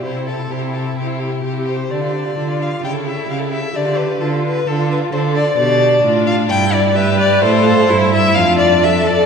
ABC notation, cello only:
X:1
M:4/4
L:1/8
Q:1/4=129
K:Ddor
V:1 name="Cello" clef=bass
C,2 C,2 C,2 C,2 | D,2 D,2 ^C,2 C,2 | D,2 D,2 D,2 D,2 | B,,2 A,,2 G,,4 |
A,,2 G,,2 F,,4 |]